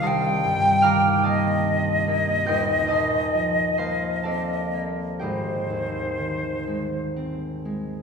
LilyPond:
<<
  \new Staff \with { instrumentName = "Flute" } { \time 6/8 \key c \dorian \tempo 4. = 44 g''4. ees''4.~ | ees''2~ ees''8 r8 | c''2~ c''16 r8. | }
  \new Staff \with { instrumentName = "Harp" } { \time 6/8 \key c \dorian <ees'' g'' a'' c''' d''' ees''' f''' g'''>4 <f'' bes'' d''' f'''>8 <ees'' a'' c''' ees'''>4. | <g'' c''' ees''' g'''>8 <ees'' a'' c''' ees'''>4 <c'' f'' a'' c'''>8 <a' d'' f'' a''>4 | <g' c'' ees'' g''>2. | }
  \new Staff \with { instrumentName = "Harp" } { \clef bass \time 6/8 \key c \dorian <c, c' d' f' g'>8 g,8 ees8 bes8 d'8 bes8 | <ees,, ees,>8 bes,8 f8 bes8 c'8 bes8 | aes,,8 ees,8 ees8 aes8 c'8 aes8 | }
>>